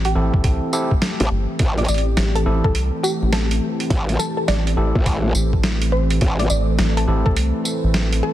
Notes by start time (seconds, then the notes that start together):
Already playing: A1 E3 A3 C4 G4
0.05 G4, closed hi-hat
0.15 A1 C4 E4 G4 A4
0.34 C2, kick
0.44 kick, closed hi-hat
0.73 C4 E4 G4 A4, tambourine
0.91 kick
1.02 snare, closed hi-hat
1.20 A1, closed hi-hat
1.31 G1
1.59 A1, kick, closed hi-hat
1.78 D5, closed hi-hat
1.85 closed hi-hat
1.88 A1 D5, closed hi-hat, tambourine
1.94 closed hi-hat
1.98 closed hi-hat
2.17 A1, snare, closed hi-hat
2.35 A4, closed hi-hat
2.46 A1 C4 E4 G4 A4
2.64 C2 A4, kick
2.75 closed hi-hat
3.03 G4, tambourine
3.22 A1
3.32 A4, snare, closed hi-hat
3.51 closed hi-hat
3.80 closed hi-hat
3.90 A1, kick, closed hi-hat
4.09 closed hi-hat
4.19 A4, snare, tambourine
4.37 A4
4.48 A1 D5, snare, closed hi-hat
4.67 closed hi-hat
4.77 A1 C4 E4 G4 A4
4.95 A1, kick
5.06 kick, closed hi-hat
5.35 A1, tambourine
5.53 kick
5.64 snare, closed hi-hat
5.82 closed hi-hat
5.92 C5
6.11 closed hi-hat
6.21 A1 A4, kick, closed hi-hat
6.39 D5, closed hi-hat
6.50 A1 D5, tambourine
6.79 A1, snare, closed hi-hat
6.97 A4, closed hi-hat
7.07 A1 C4 E4 G4 A4
7.26 C2 A4, kick
7.37 closed hi-hat
7.65 tambourine
7.84 A1
7.94 snare, closed hi-hat
8.13 closed hi-hat
8.23 A4